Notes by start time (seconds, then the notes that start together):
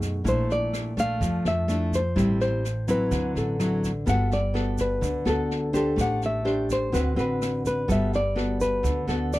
Already playing: F#2 B2 A3 D#4 G#4
0.01 kick, snare, shaker
0.24 A#1 A#2 A3 D4 E4, kick, snare, shaker
0.29 C5
0.50 D5, snare, shaker
0.73 cross-stick, snare, shaker
0.97 A3 D4 F5, kick, snare, shaker
1.21 F2 F3, kick, snare, shaker
1.45 F2 E5, cross-stick, snare, shaker
1.68 A3 D4 E4, snare, shaker
1.92 C5, kick, snare, shaker
2.16 A1 A2 G3 C4 E4, kick, cross-stick, snare, shaker
2.40 C5, snare, shaker
2.64 snare, shaker
2.88 F#3 C4 E4 B4, kick, snare, shaker
3.11 D2 D3, kick, cross-stick, snare, shaker
3.35 A1 A4, snare, shaker
3.60 F#3 C4 E4, cross-stick, snare, shaker
3.83 kick, snare, shaker
4.06 G1 G3 B3 F#4 A4 F#5, kick, snare, shaker
4.31 D5, snare, shaker
4.54 B3 F#4 A4, cross-stick, snare
4.78 B4, kick, snare, shaker
5.01 D2 D3, kick, snare, shaker
5.25 D2 B3 F#4 A4, cross-stick, snare, shaker
5.51 snare
5.73 D4 G4 A4 C5, kick, snare, shaker
5.96 A1 A3, kick, cross-stick, snare, shaker
6.01 F#5
6.22 snare, shaker
6.26 E5
6.45 D4 G4 C5, snare
6.69 C5, kick, snare, shaker
6.92 D2 D3 C4 F#4 B4, kick, cross-stick, snare, shaker
7.16 A1 C4 F#4 B4, snare, shaker
7.20 B4
7.42 cross-stick, snare, shaker
7.65 B4, kick, snare, shaker
7.88 G1 G3 B3 F#4 A4 E5, kick, snare, shaker
8.13 D5, snare, shaker
8.36 B3 F#4 A4, cross-stick, snare
8.60 B4, kick, snare, shaker
8.83 D2 D3, kick, snare, shaker
9.07 D2 B3 F#4 A4, cross-stick, snare, shaker
9.33 D5, snare, shaker